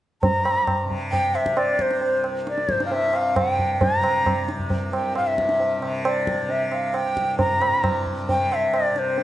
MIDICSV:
0, 0, Header, 1, 4, 480
1, 0, Start_track
1, 0, Tempo, 447427
1, 244, Time_signature, 4, 2, 24, 8
1, 9903, End_track
2, 0, Start_track
2, 0, Title_t, "Bansuri"
2, 0, Program_c, 0, 73
2, 236, Note_on_c, 0, 82, 88
2, 917, Note_off_c, 0, 82, 0
2, 1197, Note_on_c, 0, 79, 89
2, 1450, Note_on_c, 0, 76, 77
2, 1466, Note_off_c, 0, 79, 0
2, 1692, Note_on_c, 0, 74, 78
2, 1708, Note_off_c, 0, 76, 0
2, 1948, Note_on_c, 0, 72, 72
2, 1964, Note_off_c, 0, 74, 0
2, 2416, Note_off_c, 0, 72, 0
2, 2671, Note_on_c, 0, 74, 70
2, 2918, Note_off_c, 0, 74, 0
2, 2918, Note_on_c, 0, 72, 70
2, 3050, Note_off_c, 0, 72, 0
2, 3066, Note_on_c, 0, 77, 55
2, 3136, Note_on_c, 0, 76, 79
2, 3152, Note_off_c, 0, 77, 0
2, 3388, Note_on_c, 0, 77, 77
2, 3404, Note_off_c, 0, 76, 0
2, 3612, Note_on_c, 0, 79, 90
2, 3628, Note_off_c, 0, 77, 0
2, 4105, Note_on_c, 0, 82, 94
2, 4121, Note_off_c, 0, 79, 0
2, 4815, Note_off_c, 0, 82, 0
2, 5294, Note_on_c, 0, 79, 70
2, 5513, Note_off_c, 0, 79, 0
2, 5539, Note_on_c, 0, 77, 75
2, 5654, Note_on_c, 0, 76, 74
2, 5670, Note_off_c, 0, 77, 0
2, 6370, Note_off_c, 0, 76, 0
2, 6493, Note_on_c, 0, 74, 69
2, 6982, Note_on_c, 0, 76, 80
2, 6998, Note_off_c, 0, 74, 0
2, 7224, Note_on_c, 0, 77, 75
2, 7240, Note_off_c, 0, 76, 0
2, 7466, Note_on_c, 0, 79, 85
2, 7482, Note_off_c, 0, 77, 0
2, 7922, Note_off_c, 0, 79, 0
2, 7928, Note_on_c, 0, 82, 87
2, 8603, Note_off_c, 0, 82, 0
2, 8908, Note_on_c, 0, 79, 87
2, 9160, Note_on_c, 0, 76, 79
2, 9176, Note_off_c, 0, 79, 0
2, 9389, Note_on_c, 0, 74, 80
2, 9405, Note_off_c, 0, 76, 0
2, 9639, Note_on_c, 0, 72, 73
2, 9655, Note_off_c, 0, 74, 0
2, 9903, Note_off_c, 0, 72, 0
2, 9903, End_track
3, 0, Start_track
3, 0, Title_t, "Tanpura"
3, 0, Program_c, 1, 104
3, 231, Note_on_c, 1, 43, 52
3, 901, Note_on_c, 1, 48, 56
3, 1567, Note_off_c, 1, 48, 0
3, 1567, Note_on_c, 1, 48, 52
3, 2242, Note_on_c, 1, 36, 52
3, 2908, Note_off_c, 1, 43, 0
3, 2912, Note_on_c, 1, 43, 56
3, 3589, Note_off_c, 1, 48, 0
3, 3589, Note_on_c, 1, 48, 54
3, 4243, Note_off_c, 1, 48, 0
3, 4243, Note_on_c, 1, 48, 57
3, 4899, Note_off_c, 1, 36, 0
3, 4903, Note_on_c, 1, 36, 57
3, 5557, Note_off_c, 1, 43, 0
3, 5561, Note_on_c, 1, 43, 56
3, 6222, Note_off_c, 1, 48, 0
3, 6222, Note_on_c, 1, 48, 58
3, 6891, Note_off_c, 1, 48, 0
3, 6891, Note_on_c, 1, 48, 54
3, 7552, Note_off_c, 1, 36, 0
3, 7556, Note_on_c, 1, 36, 55
3, 8232, Note_off_c, 1, 43, 0
3, 8236, Note_on_c, 1, 43, 54
3, 8903, Note_off_c, 1, 48, 0
3, 8903, Note_on_c, 1, 48, 54
3, 9557, Note_off_c, 1, 48, 0
3, 9557, Note_on_c, 1, 48, 55
3, 9903, Note_off_c, 1, 36, 0
3, 9903, Note_off_c, 1, 43, 0
3, 9903, Note_off_c, 1, 48, 0
3, 9903, End_track
4, 0, Start_track
4, 0, Title_t, "Tabla"
4, 247, Note_on_c, 9, 63, 93
4, 247, Note_on_c, 9, 64, 88
4, 354, Note_off_c, 9, 63, 0
4, 354, Note_off_c, 9, 64, 0
4, 487, Note_on_c, 9, 60, 65
4, 594, Note_off_c, 9, 60, 0
4, 723, Note_on_c, 9, 60, 72
4, 723, Note_on_c, 9, 64, 64
4, 831, Note_off_c, 9, 60, 0
4, 831, Note_off_c, 9, 64, 0
4, 971, Note_on_c, 9, 64, 47
4, 1079, Note_off_c, 9, 64, 0
4, 1211, Note_on_c, 9, 63, 67
4, 1211, Note_on_c, 9, 64, 58
4, 1319, Note_off_c, 9, 63, 0
4, 1319, Note_off_c, 9, 64, 0
4, 1449, Note_on_c, 9, 60, 49
4, 1556, Note_off_c, 9, 60, 0
4, 1565, Note_on_c, 9, 37, 56
4, 1672, Note_off_c, 9, 37, 0
4, 1683, Note_on_c, 9, 60, 68
4, 1790, Note_off_c, 9, 60, 0
4, 1920, Note_on_c, 9, 37, 55
4, 2027, Note_off_c, 9, 37, 0
4, 2045, Note_on_c, 9, 62, 52
4, 2153, Note_off_c, 9, 62, 0
4, 2159, Note_on_c, 9, 63, 69
4, 2266, Note_off_c, 9, 63, 0
4, 2402, Note_on_c, 9, 60, 53
4, 2510, Note_off_c, 9, 60, 0
4, 2649, Note_on_c, 9, 62, 72
4, 2756, Note_off_c, 9, 62, 0
4, 2763, Note_on_c, 9, 62, 51
4, 2870, Note_off_c, 9, 62, 0
4, 2883, Note_on_c, 9, 37, 54
4, 2990, Note_off_c, 9, 37, 0
4, 3008, Note_on_c, 9, 62, 52
4, 3115, Note_off_c, 9, 62, 0
4, 3127, Note_on_c, 9, 63, 68
4, 3235, Note_off_c, 9, 63, 0
4, 3360, Note_on_c, 9, 60, 50
4, 3468, Note_off_c, 9, 60, 0
4, 3608, Note_on_c, 9, 60, 66
4, 3608, Note_on_c, 9, 64, 60
4, 3715, Note_off_c, 9, 60, 0
4, 3715, Note_off_c, 9, 64, 0
4, 3848, Note_on_c, 9, 64, 46
4, 3956, Note_off_c, 9, 64, 0
4, 4088, Note_on_c, 9, 63, 96
4, 4088, Note_on_c, 9, 64, 88
4, 4196, Note_off_c, 9, 63, 0
4, 4196, Note_off_c, 9, 64, 0
4, 4330, Note_on_c, 9, 60, 71
4, 4437, Note_off_c, 9, 60, 0
4, 4573, Note_on_c, 9, 60, 72
4, 4573, Note_on_c, 9, 64, 65
4, 4681, Note_off_c, 9, 60, 0
4, 4681, Note_off_c, 9, 64, 0
4, 4811, Note_on_c, 9, 62, 53
4, 4919, Note_off_c, 9, 62, 0
4, 4929, Note_on_c, 9, 64, 47
4, 5036, Note_off_c, 9, 64, 0
4, 5044, Note_on_c, 9, 63, 68
4, 5044, Note_on_c, 9, 64, 60
4, 5151, Note_off_c, 9, 63, 0
4, 5151, Note_off_c, 9, 64, 0
4, 5292, Note_on_c, 9, 60, 51
4, 5400, Note_off_c, 9, 60, 0
4, 5530, Note_on_c, 9, 60, 68
4, 5638, Note_off_c, 9, 60, 0
4, 5773, Note_on_c, 9, 37, 55
4, 5880, Note_off_c, 9, 37, 0
4, 5889, Note_on_c, 9, 62, 55
4, 5997, Note_off_c, 9, 62, 0
4, 6007, Note_on_c, 9, 63, 71
4, 6114, Note_off_c, 9, 63, 0
4, 6247, Note_on_c, 9, 60, 51
4, 6355, Note_off_c, 9, 60, 0
4, 6492, Note_on_c, 9, 60, 74
4, 6599, Note_off_c, 9, 60, 0
4, 6729, Note_on_c, 9, 37, 53
4, 6837, Note_off_c, 9, 37, 0
4, 6962, Note_on_c, 9, 63, 63
4, 7069, Note_off_c, 9, 63, 0
4, 7206, Note_on_c, 9, 60, 49
4, 7313, Note_off_c, 9, 60, 0
4, 7445, Note_on_c, 9, 60, 62
4, 7552, Note_off_c, 9, 60, 0
4, 7690, Note_on_c, 9, 37, 53
4, 7797, Note_off_c, 9, 37, 0
4, 7926, Note_on_c, 9, 63, 91
4, 7926, Note_on_c, 9, 64, 85
4, 8034, Note_off_c, 9, 63, 0
4, 8034, Note_off_c, 9, 64, 0
4, 8170, Note_on_c, 9, 60, 71
4, 8278, Note_off_c, 9, 60, 0
4, 8408, Note_on_c, 9, 60, 72
4, 8408, Note_on_c, 9, 64, 63
4, 8515, Note_off_c, 9, 60, 0
4, 8515, Note_off_c, 9, 64, 0
4, 8653, Note_on_c, 9, 64, 46
4, 8760, Note_off_c, 9, 64, 0
4, 8892, Note_on_c, 9, 63, 69
4, 8892, Note_on_c, 9, 64, 62
4, 9000, Note_off_c, 9, 63, 0
4, 9000, Note_off_c, 9, 64, 0
4, 9139, Note_on_c, 9, 60, 52
4, 9246, Note_off_c, 9, 60, 0
4, 9373, Note_on_c, 9, 60, 64
4, 9480, Note_off_c, 9, 60, 0
4, 9612, Note_on_c, 9, 62, 50
4, 9719, Note_off_c, 9, 62, 0
4, 9847, Note_on_c, 9, 63, 73
4, 9903, Note_off_c, 9, 63, 0
4, 9903, End_track
0, 0, End_of_file